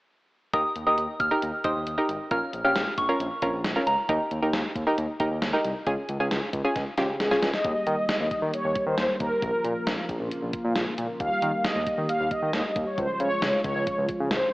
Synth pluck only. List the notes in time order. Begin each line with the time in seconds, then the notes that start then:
0.54 D#4 G4 A#4
0.87 D#4 G4 A#4
1.31 D#4 G4 A#4
1.64 D#4 G4 C5
1.98 D#4 G4 A#4
2.31 C#4 F4 A#4
2.65 C#4 F4 G4
3.09 C#4 F4 A#4
3.42 C#4 F4 A#4
3.76 C#4 F4 A#4
4.09 D#4 G4 A#4
4.42 D#4 G4 A#4
4.87 D#4 G4 A#4
5.20 D#4 G4 A#4
5.53 D#4 G4 A#4
5.87 C#4 F4 G#4
6.20 C#4 F4 G#4
6.65 C#4 F4 G#4
6.98 C#4 F4 G4
7.31 C#4 F4 G#4